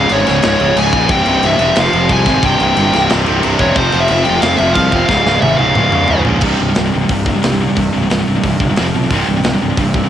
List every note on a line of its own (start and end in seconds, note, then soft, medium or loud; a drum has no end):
0.00 1.09 C#3 medium
0.00 1.07 G#3 medium
0.00 1.07 F4 medium
0.00 1.09 G#4 medium
0.00 0.11 F5 loud
0.09 0.25 G#1 loud
0.09 0.25 C#2 loud
0.09 0.25 G#2 loud
0.09 0.25 C#3 loud
0.09 0.27 C#5 loud
0.09 crash medium
0.26 0.43 C#1 medium
0.26 0.41 C#2 medium
0.26 0.42 G#2 medium
0.26 0.42 C#3 medium
0.26 0.79 C#5 medium
0.26 snare soft
0.26 crash medium
0.42 0.59 C#1 medium
0.42 0.59 C#2 loud
0.42 0.58 G#2 loud
0.42 0.58 C#3 medium
0.42 snare loud
0.42 crash medium
0.59 0.75 C#1 medium
0.59 0.74 C#2 medium
0.59 0.75 G#2 medium
0.59 0.75 C#3 medium
0.59 crash medium
0.76 0.91 C#1 medium
0.76 0.92 C#2 medium
0.76 0.92 G#2 medium
0.76 0.91 C#3 loud
0.76 1.11 G#5 medium
0.76 crash medium
0.92 1.08 A#1 medium
0.92 1.09 C#2 medium
0.92 1.09 G#2 medium
0.92 1.09 C#3 medium
0.92 kick medium
0.92 crash medium
1.07 1.24 C1 loud
1.07 1.26 C2 loud
1.07 1.26 G2 loud
1.07 5.05 C3 medium
1.07 1.25 C3 loud
1.07 1.75 G3 medium
1.07 1.75 E4 medium
1.07 1.75 G4 medium
1.07 kick loud
1.07 crash medium
1.11 1.45 G5 loud
1.26 1.41 C1 medium
1.26 1.42 C2 medium
1.26 1.42 G2 medium
1.26 1.42 C3 medium
1.26 crash medium
1.43 1.58 C1 medium
1.43 1.59 C2 loud
1.43 1.59 G2 loud
1.43 1.59 C3 loud
1.43 1.79 E5 medium
1.43 crash medium
1.59 1.74 E1 medium
1.59 1.75 C2 medium
1.59 1.75 G2 loud
1.59 1.75 C3 loud
1.59 crash medium
1.75 1.92 F1 medium
1.75 1.92 F2 medium
1.75 1.92 C3 loud
1.75 1.92 F3 loud
1.75 2.43 G#3 medium
1.75 2.43 F4 medium
1.75 2.43 G#4 medium
1.75 2.12 F5 loud
1.75 snare loud
1.75 crash medium
1.93 2.08 F1 medium
1.93 2.08 F2 medium
1.93 2.09 C3 medium
1.93 2.09 F3 loud
1.93 crash medium
2.09 2.25 C2 medium
2.09 2.26 F2 medium
2.09 2.25 C3 medium
2.09 2.25 F3 medium
2.09 2.43 G#5 loud
2.09 kick medium
2.09 crash medium
2.26 2.41 G#1 medium
2.26 2.42 F2 medium
2.26 2.42 C3 medium
2.26 2.42 F3 loud
2.26 kick medium
2.26 snare soft
2.26 crash medium
2.42 2.58 C1 medium
2.42 2.59 C2 loud
2.42 2.58 G2 loud
2.42 2.57 C3 loud
2.42 3.76 G3 medium
2.42 3.75 E4 medium
2.42 3.76 G4 medium
2.42 2.62 G5 loud
2.42 kick loud
2.42 crash medium
2.58 2.75 C1 medium
2.58 2.75 C2 medium
2.58 2.75 G2 medium
2.58 2.76 C3 medium
2.58 crash medium
2.64 3.09 G5 medium
2.76 2.92 G1 medium
2.76 2.93 C2 loud
2.76 2.93 G2 loud
2.76 2.93 C3 loud
2.76 crash medium
2.93 3.09 C1 medium
2.93 3.08 C2 medium
2.93 3.08 G2 medium
2.93 3.09 C3 loud
2.93 snare soft
2.93 crash medium
3.09 3.26 C1 medium
3.09 3.25 C2 medium
3.09 3.24 G2 loud
3.09 3.24 C3 loud
3.09 snare loud
3.09 crash medium
3.25 3.43 C1 medium
3.25 3.42 C2 medium
3.25 3.42 G2 medium
3.25 3.43 C3 loud
3.25 crash medium
3.43 3.59 C1 medium
3.43 3.59 C2 medium
3.43 3.59 G2 loud
3.43 3.58 C3 loud
3.43 crash medium
3.59 3.74 E1 medium
3.59 3.76 C2 medium
3.59 3.76 G2 medium
3.59 3.75 C3 loud
3.59 3.76 C#5 medium
3.59 kick medium
3.59 crash medium
3.76 3.91 F1 loud
3.76 3.93 F2 loud
3.76 3.93 C3 loud
3.76 3.93 F3 loud
3.76 6.41 G#3 medium
3.76 6.41 F4 medium
3.76 5.07 G#4 medium
3.76 4.02 C5 loud
3.76 kick loud
3.76 crash medium
3.92 4.08 F1 medium
3.92 4.09 F2 medium
3.92 4.10 C3 medium
3.92 4.10 F3 medium
3.92 crash medium
4.00 4.24 E5 loud
4.08 4.25 F1 loud
4.08 4.25 F2 loud
4.08 4.25 C3 loud
4.08 4.25 F3 loud
4.08 crash medium
4.24 4.42 F1 medium
4.24 4.41 F2 medium
4.24 4.41 C3 medium
4.24 4.42 F3 loud
4.24 4.41 G5 loud
4.24 crash medium
4.41 4.58 F1 medium
4.41 4.60 F2 loud
4.41 4.60 C3 loud
4.41 4.59 F3 loud
4.41 4.57 F5 loud
4.41 snare loud
4.41 crash medium
4.58 4.75 F1 medium
4.58 4.74 F2 medium
4.58 4.75 C3 loud
4.58 4.75 F3 loud
4.58 4.73 E5 medium
4.58 crash medium
4.73 4.91 C2 medium
4.73 4.92 F2 medium
4.73 4.91 C3 loud
4.73 4.91 F3 loud
4.73 5.05 F5 loud
4.73 kick loud
4.73 crash medium
4.92 5.08 E1 medium
4.92 5.09 F2 medium
4.92 5.09 C3 medium
4.92 5.09 F3 loud
4.92 kick medium
4.92 crash medium
5.06 5.24 C#1 medium
5.06 5.27 C#2 medium
5.06 5.27 G#2 loud
5.06 6.42 C#3 medium
5.06 6.41 G#4 loud
5.06 5.41 F5 loud
5.06 kick loud
5.06 snare medium
5.10 5.26 C#3 loud
5.26 5.41 C#1 medium
5.26 5.42 C#2 medium
5.26 5.42 G#2 medium
5.26 5.42 C#3 medium
5.26 snare medium
5.41 5.57 G#1 loud
5.41 5.59 C#2 medium
5.41 5.58 G#2 loud
5.41 5.58 C#3 loud
5.41 5.57 E5 loud
5.41 high tom medium
5.58 5.75 C#1 medium
5.58 5.75 C#2 medium
5.58 5.75 G#2 medium
5.58 5.75 C#3 loud
5.58 6.22 F5 medium
5.58 high tom medium
5.75 5.92 C#1 medium
5.75 5.94 C#2 medium
5.75 5.93 G#2 loud
5.75 5.92 C#3 loud
5.75 mid tom medium
5.92 6.08 C#1 medium
5.92 6.08 C#2 medium
5.92 6.09 G#2 medium
5.92 6.09 C#3 medium
5.92 mid tom medium
6.08 6.25 C#1 medium
6.08 6.26 C#2 medium
6.08 6.25 G#2 medium
6.08 6.25 C#3 loud
6.08 floor tom loud
6.25 6.41 A#1 medium
6.25 6.42 C#2 medium
6.25 6.42 G#2 medium
6.25 6.42 C#3 loud
6.25 floor tom medium
6.41 6.53 C1 medium
6.41 6.59 C2 loud
6.41 6.59 G2 medium
6.41 6.59 C3 loud
6.41 kick medium
6.41 crash loud
6.60 6.71 C1 medium
6.60 6.68 C2 medium
6.60 6.67 G2 medium
6.69 6.76 C2 medium
6.69 6.76 G2 medium
6.75 6.89 C1 medium
6.75 6.85 C2 medium
6.75 6.84 G2 medium
6.75 snare loud
6.75 open hi-hat medium
6.86 6.93 C2 medium
6.86 6.92 G2 medium
6.93 7.06 C1 medium
6.93 7.01 C2 medium
6.93 7.00 G2 medium
7.01 7.09 C2 medium
7.01 7.10 G2 medium
7.09 7.32 C1 medium
7.09 7.25 C2 medium
7.09 7.25 G2 medium
7.09 7.77 C3 medium
7.09 kick medium
7.09 open hi-hat medium
7.26 7.34 C2 medium
7.26 7.33 G2 medium
7.26 kick medium
7.35 7.40 C2 medium
7.35 7.41 G2 medium
7.42 7.50 C2 medium
7.42 7.66 C2 medium
7.42 7.50 G2 medium
7.42 snare loud
7.42 open hi-hat medium
7.52 7.60 C2 medium
7.52 7.59 G2 medium
7.60 7.67 C2 medium
7.60 7.66 G2 medium
7.67 7.74 C2 medium
7.67 7.74 G2 medium
7.75 7.88 C1 medium
7.75 7.91 C2 medium
7.75 7.91 G2 medium
7.75 8.43 C3 loud
7.75 kick medium
7.75 open hi-hat soft
7.93 8.06 C1 medium
7.93 8.01 C2 medium
7.93 8.00 G2 medium
8.02 8.08 C2 medium
8.02 8.09 G2 medium
8.10 8.22 C1 loud
8.10 8.18 C2 medium
8.10 8.18 G2 medium
8.10 snare loud
8.10 open hi-hat medium
8.19 8.26 C2 medium
8.19 8.26 G2 medium
8.27 8.39 C1 medium
8.27 8.35 C2 medium
8.27 8.34 G2 medium
8.35 8.42 C2 medium
8.35 8.43 G2 medium
8.44 8.55 C1 medium
8.44 8.59 C2 medium
8.44 8.59 G2 medium
8.44 8.78 C3 medium
8.44 kick medium
8.44 open hi-hat medium
8.60 8.71 G1 medium
8.60 8.69 C2 medium
8.60 8.68 G2 medium
8.60 kick medium
8.69 8.78 C2 medium
8.69 8.77 G2 medium
8.76 8.89 F1 medium
8.76 8.85 F2 medium
8.76 8.85 C3 loud
8.76 8.85 F3 loud
8.76 snare loud
8.76 open hi-hat medium
8.86 8.94 F2 medium
8.86 8.93 C3 medium
8.94 9.05 B1 medium
8.94 9.02 F2 medium
8.94 9.02 C3 medium
9.03 9.11 F2 medium
9.03 9.11 C3 medium
9.11 9.22 C1 medium
9.11 9.27 C2 medium
9.11 9.27 G2 medium
9.11 9.27 C3 loud
9.11 kick loud
9.11 open hi-hat medium
9.28 9.39 C1 medium
9.28 9.36 C2 medium
9.28 9.35 G2 medium
9.36 9.43 C2 medium
9.36 9.44 G2 medium
9.44 9.55 C1 loud
9.44 9.52 C2 medium
9.44 9.52 G2 medium
9.44 snare loud
9.44 open hi-hat medium
9.53 9.61 C2 medium
9.53 9.61 G2 medium
9.62 9.73 C1 medium
9.62 9.69 C2 medium
9.62 9.69 G2 medium
9.70 9.77 C2 medium
9.70 9.78 G2 medium
9.77 10.00 C1 medium
9.77 9.93 C2 medium
9.77 9.93 G2 medium
9.77 10.09 C3 medium
9.77 kick medium
9.77 open hi-hat medium
9.94 10.03 C2 medium
9.94 10.02 G2 medium
9.94 kick medium
10.03 10.09 C2 medium
10.03 10.09 G2 medium